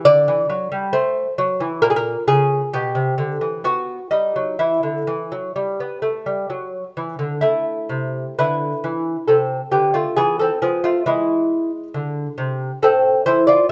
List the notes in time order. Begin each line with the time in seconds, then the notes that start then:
0.05 D3 D5
0.28 E3
0.50 F#3
0.72 G3
0.93 A3 C5
1.38 F#3
1.60 E3
1.82 A#2 A#4
1.90 G#4
1.96 A#4
2.27 C#3 G#4
2.73 B2 G4
2.95 C3
3.18 D3
3.41 E3
3.64 B3 F#4
4.11 G3 D#4
4.36 F#3
4.59 E3 E4
4.83 D3
5.07 E3
5.32 F#3
5.56 G3
5.80 B3
6.02 A3
6.26 G3
6.50 F#3
6.97 E3
7.19 D3
7.41 A3 E4
7.89 C3
8.39 D3 E4 B4
8.84 E3
9.27 C3 C4 A4
9.71 D3 B3 G4
9.94 A3 F4
10.16 E3 B3 G#4
10.39 C4 A4
10.62 F3 B3 G#4
10.84 A3 F4
11.06 E3 G#3 E4
11.94 D3
12.38 C3
12.82 A2 C4 A4
13.26 E3 E4 C5
13.47 F4 D5